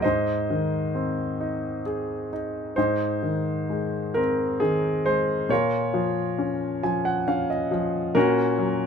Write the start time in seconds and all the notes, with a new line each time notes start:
0.02 G#2 C5 D#5
0.50 D#3
0.95 C4
1.40 D#4
1.86 G#4
2.33 D#4
2.76 G#2 D#4 C5
3.23 D#3
3.70 G#3
4.14 C4 A#4
4.60 D#3 G#4
5.06 G#3 C5
5.49 A#2 F4 A#4 C#5
5.94 F3
6.38 C#4
6.83 F3 G#5
7.05 F#5
7.28 C#4 F5
7.50 D#5
7.71 F3
8.15 A#2 C#4 F#4 A#4
8.58 F#3